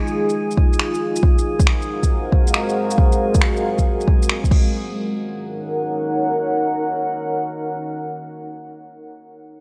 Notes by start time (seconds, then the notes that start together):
Already playing: G#3 D#4 F4 G#4
0.07 shaker
0.29 shaker
0.51 shaker
0.57 kick
0.73 shaker
0.79 finger snap
0.94 shaker
1.16 shaker
1.23 G#3 F#4 A#4 C5 F5, kick
1.38 shaker
1.59 kick, shaker
1.67 finger snap
1.82 shaker
2.03 kick, shaker
2.32 kick
2.47 shaker
2.54 finger snap
2.69 shaker
2.91 shaker
2.98 kick
3.12 shaker
3.35 kick, shaker
3.42 finger snap
3.56 shaker
3.78 kick, shaker
4.01 shaker
4.08 kick
4.23 shaker
4.29 finger snap
4.44 kick, shaker
4.51 D#4 A#4 C#5 F#5, kick, crash